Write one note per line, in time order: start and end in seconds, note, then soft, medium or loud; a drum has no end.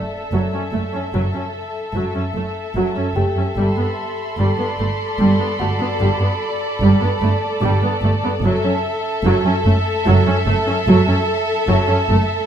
0.00 3.53 A4 soft
0.00 2.32 D5 soft
0.00 4.34 E5 soft
0.00 sub drop soft
0.32 0.40 F#1 soft
0.32 0.40 F#2 soft
0.32 0.51 F#3 soft
0.53 0.61 F#2 soft
0.53 0.61 C#4 soft
0.73 0.81 F#1 soft
0.73 0.81 F#2 soft
0.73 0.81 A3 soft
0.93 1.01 F#2 soft
0.93 1.01 C#4 soft
1.13 1.21 F#1 soft
1.13 1.21 F#2 soft
1.13 1.33 F#3 soft
1.34 1.42 F#2 soft
1.34 1.43 C#4 soft
1.94 2.02 F#1 soft
1.94 2.03 F#2 soft
1.94 2.14 F#3 soft
2.15 2.23 F#2 soft
2.15 2.23 C#4 soft
2.35 2.43 F#1 soft
2.35 2.43 F#2 soft
2.35 2.44 A3 soft
2.75 2.83 F#1 soft
2.75 2.84 F#2 soft
2.75 2.95 F#3 soft
2.96 3.04 F#2 soft
2.96 3.05 C#4 soft
3.15 3.23 F#1 soft
3.15 3.24 F#2 soft
3.15 3.25 A3 soft
3.15 5.56 G4 soft
3.15 5.56 G5 soft
3.36 3.44 F#2 soft
3.36 3.45 C#4 soft
3.54 3.64 G1 soft
3.54 3.64 G2 soft
3.54 3.76 G3 soft
3.54 8.38 A4 soft
3.54 6.28 B5 soft
3.54 6.28 C6 soft
3.77 3.85 G2 soft
3.77 3.85 B3 soft
4.37 4.45 G1 soft
4.37 4.46 G2 soft
4.37 4.57 G3 soft
4.37 8.43 D5 soft
4.57 4.65 G2 soft
4.57 4.66 B3 soft
4.78 4.86 G1 soft
4.78 4.86 G2 soft
4.78 4.87 A3 soft
5.19 5.27 G1 soft
5.19 5.27 G2 soft
5.19 5.38 G3 soft
5.38 5.46 G2 soft
5.38 5.48 B3 soft
5.59 5.67 G1 soft
5.59 5.67 G2 soft
5.59 5.68 A3 soft
5.59 8.00 F#4 soft
5.59 7.99 F#5 soft
5.79 5.87 G2 soft
5.79 5.89 B3 soft
6.00 6.08 G1 medium
6.00 6.08 G2 soft
6.00 6.19 G3 soft
6.20 6.28 G2 soft
6.20 6.28 B3 soft
6.28 7.18 B5 soft
6.80 6.88 G1 soft
6.80 6.89 G2 medium
6.80 7.01 G3 medium
7.01 7.09 G2 soft
7.01 7.09 B3 soft
7.21 7.29 G1 soft
7.21 7.29 G2 soft
7.21 7.30 A3 soft
7.61 7.70 G1 medium
7.61 7.69 G2 medium
7.61 7.81 G3 medium
7.61 10.01 D6 soft
7.82 7.90 G2 soft
7.82 7.91 B3 soft
8.02 8.10 G1 soft
8.02 8.11 G2 soft
8.02 8.11 A3 soft
8.24 8.32 G2 soft
8.24 8.32 B3 soft
8.42 8.50 F#1 medium
8.42 8.52 F#2 medium
8.42 8.62 F#3 medium
8.42 12.46 A4 medium
8.42 12.46 E5 medium
8.64 8.72 F#2 soft
8.64 8.72 C#4 soft
9.24 9.32 F#1 medium
9.24 9.33 F#2 medium
9.24 9.44 F#3 medium
9.45 9.53 F#2 soft
9.45 9.53 C#4 soft
9.65 9.73 F#1 soft
9.65 9.74 F#2 soft
9.65 9.74 A3 soft
10.06 10.14 F#1 medium
10.06 10.14 F#2 medium
10.06 10.25 F#3 medium
10.26 10.34 F#2 soft
10.26 10.35 C#4 soft
10.46 10.54 F#1 medium
10.46 10.55 F#2 soft
10.46 10.54 A3 medium
10.67 10.76 F#2 soft
10.67 10.75 C#4 medium
10.86 10.94 F#1 medium
10.86 10.96 F#2 medium
10.86 11.06 F#3 medium
11.07 11.15 F#2 soft
11.07 11.15 C#4 soft
11.68 11.76 F#1 medium
11.68 11.76 F#2 medium
11.68 11.87 F#3 medium
11.89 11.97 F#2 soft
11.89 11.97 C#4 medium
12.09 12.17 F#1 soft
12.09 12.17 F#2 soft
12.09 12.17 A3 soft